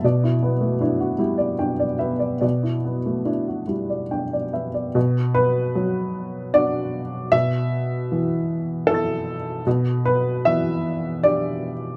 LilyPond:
<<
  \new Staff \with { instrumentName = "Upright piano" } { \time 3/4 \key g \lydian \tempo 4 = 76 d''16 e'8 a16 e'16 fis'16 e'16 d''16 g''16 d''16 e''16 d''16 | d''16 e'8 a16 e'16 fis'16 e'16 d''16 g''16 d''16 e''16 d''16 | r8 b'4. d''4 | e''2 <a' e'' e''' a'''>4 |
r8 b'8 e''4 d''4 | }
  \new Staff \with { instrumentName = "Upright piano" } { \time 3/4 \key g \lydian b,8 b8 d'8 g8 d'8 b8 | b,8 b8 d'8 g8 d'8 b8 | b,4 fis4 <d' fis'>4 | b,4 e4 e'4 |
b,4 e4 <d' g'>4 | }
>>